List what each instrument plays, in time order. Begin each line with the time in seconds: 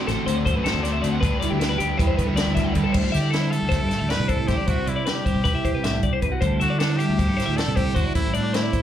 Already playing: clean electric guitar D3 A3 C4 F#4
0.07 fingered electric bass A1, overdriven electric guitar D3 A3 C4 F#4 C5, clean electric guitar A4 C5, snare, closed hi-hat
0.26 fingered electric bass D2, overdriven electric guitar A3 C4 F#4 C5, clean electric guitar C4 C5, closed hi-hat
0.37 clean electric guitar D5
0.45 clean electric guitar A3 C5, overdriven electric guitar C4 F#4 C5, kick, closed hi-hat
0.55 fingered electric bass F#2, clean electric guitar B4
0.64 overdriven electric guitar D3 A3 C4 F#4 C5, clean electric guitar C4 A4, snare, closed hi-hat
0.74 fingered electric bass D2
0.83 clean electric guitar A3 D5, overdriven electric guitar F#4 C5, snare, closed hi-hat
0.88 overdriven electric guitar C4
0.92 clean electric guitar E5
1.02 fingered electric bass D2, overdriven electric guitar D3 A3 C4 F#4, clean electric guitar D3 D5, closed hi-hat
1.06 overdriven electric guitar C5
1.12 clean electric guitar F#5
1.21 fingered electric bass D2, overdriven electric guitar D3 G3 D4 G4, clean electric guitar D3 B4, kick, closed hi-hat
1.25 overdriven electric guitar B4
1.40 clean electric guitar E4 D5, overdriven electric guitar G4 B4, closed hi-hat
1.44 overdriven electric guitar D4
1.50 fingered electric bass D2, clean electric guitar G4
1.59 overdriven electric guitar G3 D4 G4 B4, clean electric guitar G4 A4, snare, closed hi-hat
1.69 clean electric guitar B4
1.78 fingered electric bass D2, overdriven electric guitar G3 D4 G4 B4, clean electric guitar G4 B4, closed hi-hat
1.82 overdriven electric guitar D3
1.98 fingered electric bass E2, overdriven electric guitar G3 D4 G4 B4, clean electric guitar E4 B4, kick, closed hi-hat
2.07 clean electric guitar C5
2.17 clean electric guitar G3 B4, overdriven electric guitar D4 G4 B4, kick, closed hi-hat
2.27 fingered electric bass D2, clean electric guitar A4
2.35 overdriven electric guitar D3 G3 D4 G4 B4, clean electric guitar E4 D5, snare, closed hi-hat
2.48 fingered electric bass D2
2.55 clean electric guitar G3 E5, overdriven electric guitar D4 G4 B4, kick, snare, closed hi-hat
2.64 clean electric guitar F#5
2.73 overdriven electric guitar D3 G3 D4, fingered electric bass D3, clean electric guitar D3 D5, kick, closed hi-hat
2.77 overdriven electric guitar G4 B4
2.84 clean electric guitar A4
2.93 fingered electric bass D2, clean electric guitar D3 E4 C5, kick, crash
3.12 fingered electric bass D3, trumpet G4, clean electric guitar E5, closed hi-hat
3.21 clean electric guitar D5
3.30 trumpet E4, clean electric guitar A4, snare, closed hi-hat
3.40 clean electric guitar C5
3.50 clean electric guitar G3 E5, trumpet A4, closed hi-hat
3.63 fingered electric bass D2
3.69 clean electric guitar E4 C5, kick, snare, closed hi-hat
3.79 fingered electric bass G2, clean electric guitar A4
3.88 clean electric guitar A2 C5, snare, closed hi-hat
3.99 fingered electric bass D2, clean electric guitar E5
4.09 clean electric guitar E4 D5, trumpet B4, snare, closed hi-hat
4.20 fingered electric bass C3
4.28 clean electric guitar E4 C5, trumpet A4, kick, closed hi-hat
4.39 clean electric guitar A4
4.47 fingered electric bass A1, clean electric guitar D3 E4 C5, trumpet G4, kick, snare, closed hi-hat
4.57 clean electric guitar D5
4.66 fingered electric bass C2, clean electric guitar C3 E4 C5, trumpet F#4, kick, closed hi-hat
4.86 fingered electric bass C3, trumpet E4, clean electric guitar D5, closed hi-hat
4.96 clean electric guitar D5
5.06 trumpet G4, clean electric guitar B4, snare, closed hi-hat
5.15 clean electric guitar D5
5.25 clean electric guitar G3 C5, kick, closed hi-hat
5.36 fingered electric bass B1
5.44 clean electric guitar E4 B4, kick, closed hi-hat
5.55 fingered electric bass C2, clean electric guitar E5
5.63 clean electric guitar C3 C5, kick, closed hi-hat
5.74 fingered electric bass C2, clean electric guitar B4
5.83 clean electric guitar A2 E5, snare, closed hi-hat
6.02 fingered electric bass C2, clean electric guitar B2 D5, kick, closed hi-hat
6.13 clean electric guitar C5
6.21 clean electric guitar C3 B4, kick, closed hi-hat
6.32 clean electric guitar F#4
6.40 fingered electric bass D2, clean electric guitar D3 G3 C4 E4 A4 C5, kick, closed hi-hat
6.60 fingered electric bass D3, trumpet F#4, clean electric guitar E5, closed hi-hat
6.70 clean electric guitar D5
6.79 trumpet D4, clean electric guitar A4, snare, closed hi-hat
6.89 clean electric guitar C5
6.97 clean electric guitar G3 E5, trumpet G4, closed hi-hat
7.09 fingered electric bass D2
7.18 clean electric guitar E4 C5, kick, closed hi-hat
7.28 fingered electric bass G2, clean electric guitar A4
7.37 clean electric guitar A2 C5, snare, closed hi-hat
7.46 fingered electric bass D2, clean electric guitar E5
7.56 clean electric guitar E4 D5, trumpet A4, snare, closed hi-hat
7.68 fingered electric bass C3
7.76 clean electric guitar E4 C5, trumpet G4, kick, closed hi-hat
7.86 clean electric guitar A4
7.94 fingered electric bass E2, clean electric guitar D3 E4 C5, trumpet F#4, kick, closed hi-hat
8.04 clean electric guitar D5
8.15 fingered electric bass A1, clean electric guitar A2 C4 C5, trumpet E4, kick, closed hi-hat
8.34 fingered electric bass A2, trumpet D4, clean electric guitar D5, closed hi-hat
8.43 clean electric guitar D5
8.53 trumpet E4, clean electric guitar C5, snare, closed hi-hat
8.63 clean electric guitar D5
8.73 clean electric guitar A3 C5, kick, closed hi-hat